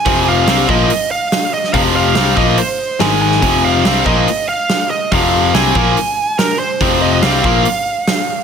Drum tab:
HH |o---o---o---o---|o---o---o---o---|o---o---o---o---|o---o---o---o---|
SD |----o-------o--o|----o-------o--o|----o-------o---|----o-------o---|
BD |o-----o---------|o-----o---------|o-----o---------|o-----o---------|

HH |o---o---o---o---|
SD |----o-------o---|
BD |o-----o---------|